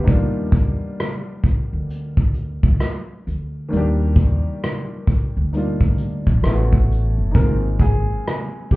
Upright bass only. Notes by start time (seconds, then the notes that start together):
0.08 D#2
1.73 D2
2.63 D2
3.27 D2
3.73 D#2
5.37 D2
6.27 A#1
6.44 A1
7.18 F#1
7.35 G#1